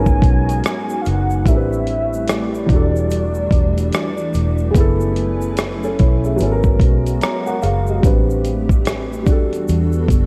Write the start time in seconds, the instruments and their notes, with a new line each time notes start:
Already playing: fingered electric bass G#1, felt piano G#2 F#3 B3 C#4 E4 A#4 C#5, analog synth pad G#3 B3 F#4, soft synth lead G#5
0.06 kick, shaker
0.22 fingered electric bass B1, kick, closed hi-hat
0.49 closed hi-hat, shaker
0.64 cross-stick, closed hi-hat, shaker
0.89 shaker
1.02 soft synth lead F5, shaker
1.06 fingered electric bass F#1, soft synth lead F#5, closed hi-hat
1.30 shaker
1.45 fingered electric bass A1, felt piano A2 G3 C4 D4, analog synth pad G3 A3 C4, soft synth lead E5, kick, closed hi-hat, shaker
1.49 felt piano A#4
1.56 felt piano B4
1.73 shaker
1.87 closed hi-hat
2.13 shaker
2.28 soft synth lead D5, cross-stick, closed hi-hat, shaker
2.55 shaker
2.66 fingered electric bass E1, felt piano E2 G3, analog synth pad E3 A3 D4 F#4, kick, closed hi-hat
2.71 felt piano D4 F#4
2.76 felt piano A4
2.96 shaker
3.11 closed hi-hat, shaker
3.34 shaker
3.51 fingered electric bass E1, kick, closed hi-hat
3.78 closed hi-hat, shaker
3.92 soft synth lead D5, cross-stick, closed hi-hat, shaker
4.18 shaker
4.33 fingered electric bass E1, closed hi-hat, shaker
4.58 shaker
4.71 felt piano B3 G#4, analog synth pad C#4 E4 B4 G#5, kick
4.75 fingered electric bass F#1, analog synth pad F#3, felt piano E4, closed hi-hat, shaker
4.80 felt piano A4
5.01 shaker
5.16 closed hi-hat
5.41 shaker
5.57 cross-stick, closed hi-hat, shaker
5.83 felt piano C#4 A4, shaker
5.99 fingered electric bass B1, felt piano E4 C#5, kick, closed hi-hat
6.24 felt piano G#4 E5, shaker
6.36 felt piano F#3 B3, analog synth pad G#3 B3 F#4, shaker
6.40 fingered electric bass G#1, felt piano C#4, closed hi-hat
6.45 felt piano A4
6.52 felt piano A#4
6.63 kick, shaker
6.80 fingered electric bass B1, kick, closed hi-hat
7.06 closed hi-hat, shaker
7.21 felt piano C#5 A#5, cross-stick, closed hi-hat, shaker
7.47 felt piano A#4 F#5, shaker
7.62 fingered electric bass F#1, felt piano G#4 F5, closed hi-hat, shaker
7.87 felt piano F#4 D#5, shaker
8.01 fingered electric bass A1, felt piano G3 C4 D4, analog synth pad A3 C4 G4, kick, closed hi-hat, shaker
8.05 felt piano B4
8.30 shaker
8.45 closed hi-hat, shaker
8.69 kick, shaker
8.85 cross-stick, closed hi-hat, shaker
9.13 shaker
9.23 analog synth pad E3 D4, felt piano G3 D4, kick, shaker
9.27 fingered electric bass E1, analog synth pad G3 B3 F#4 A4, felt piano F#4, closed hi-hat
9.32 felt piano A4
9.53 closed hi-hat, shaker
9.68 fingered electric bass E2, closed hi-hat, shaker
9.92 shaker
10.08 fingered electric bass F#1, kick, closed hi-hat, shaker